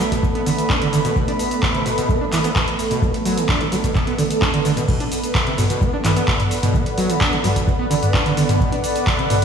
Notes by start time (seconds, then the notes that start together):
Already playing: A3 B3 A4 D5 B5
0.01 cabasa
0.12 B2, kick, closed hi-hat, cabasa
0.23 B2, kick, cabasa
0.35 B3, closed hi-hat
0.46 D3, open hi-hat, cabasa
0.58 closed hi-hat, cabasa
0.70 D4, kick, clap, cabasa
0.82 D3, closed hi-hat
0.93 D3, open hi-hat, cabasa
1.05 B2, closed hi-hat, cabasa
1.16 B2, kick, cabasa
1.28 D4, closed hi-hat
1.39 open hi-hat, cabasa
1.51 closed hi-hat, cabasa
1.63 kick, clap, cabasa
1.75 C3, closed hi-hat
1.86 B2, open hi-hat, cabasa
1.98 B2, closed hi-hat, cabasa
2.09 B3, kick, cabasa
2.21 D4
2.32 E3, clap, open hi-hat, cabasa
2.44 B3, closed hi-hat, cabasa
2.56 B2, kick, clap, cabasa
2.68 closed hi-hat
2.79 open hi-hat, cabasa
2.91 B2, closed hi-hat, cabasa
3.02 B3, kick, cabasa
3.14 closed hi-hat
3.25 F#3, open hi-hat, cabasa
3.37 E3, closed hi-hat, cabasa
3.49 D4, kick, clap, cabasa
3.61 B2, closed hi-hat
3.72 F#3, open hi-hat, cabasa
3.84 B2, kick, closed hi-hat, cabasa
3.95 B2, kick, clap, cabasa
4.07 B3, closed hi-hat
4.19 D3, open hi-hat, cabasa
4.31 closed hi-hat, cabasa
4.42 D4, kick, clap, cabasa
4.54 D3, closed hi-hat
4.65 D3, open hi-hat, cabasa
4.77 B2, closed hi-hat, cabasa
4.88 B2 B3 B4, kick, crash, cabasa
5.00 D4, closed hi-hat
5.07 F#5
5.12 open hi-hat, cabasa
5.16 A4
5.24 closed hi-hat, cabasa
5.35 D5, kick, clap, cabasa
5.47 C3, closed hi-hat
5.58 B2, mid tom, open hi-hat, cabasa
5.70 B2, closed hi-hat, cabasa
5.81 B3, kick, cabasa
5.93 D4
6.04 E3, clap, mid tom, open hi-hat, cabasa
6.16 B3, closed hi-hat, cabasa
6.28 B2, kick, clap, cabasa
6.40 closed hi-hat, mid tom
6.51 open hi-hat, cabasa
6.63 B2, closed hi-hat, mid tom, cabasa
6.74 B3, kick, cabasa
6.86 closed hi-hat
6.98 F#3, open hi-hat, cabasa
7.10 E3, closed hi-hat, cabasa
7.21 D4, kick, clap, cabasa
7.33 B2, closed hi-hat
7.44 F#3, mid tom, open hi-hat, cabasa
7.56 B2, kick, closed hi-hat, cabasa
7.67 B2, kick, cabasa
7.79 B3
7.90 D3, open hi-hat, cabasa
8.03 closed hi-hat, mid tom, cabasa
8.14 D4, kick, clap, cabasa
8.26 D3, closed hi-hat
8.37 D3, open hi-hat, cabasa
8.49 B2, closed hi-hat, mid tom, cabasa
8.60 B2, kick, cabasa
8.72 D4, closed hi-hat
8.84 open hi-hat, cabasa
8.96 closed hi-hat, cabasa
9.07 kick, clap, cabasa
9.19 C3, closed hi-hat
9.30 B2, mid tom, open hi-hat, cabasa